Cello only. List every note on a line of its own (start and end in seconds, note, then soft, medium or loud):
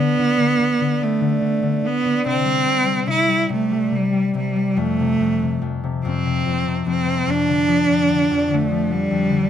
0.00 1.05 B3 medium
1.03 1.88 A3 medium
1.86 2.26 B3 medium
2.28 3.06 C4 loud
3.10 3.48 E4 medium
3.53 3.97 A3 medium
3.96 4.36 G3 medium
4.37 4.80 G3 medium
4.79 5.62 A3 medium
6.06 6.83 C4 medium
6.90 7.32 C4 medium
7.30 8.55 D4 medium
8.54 8.94 A3 medium
8.92 9.50 G3 medium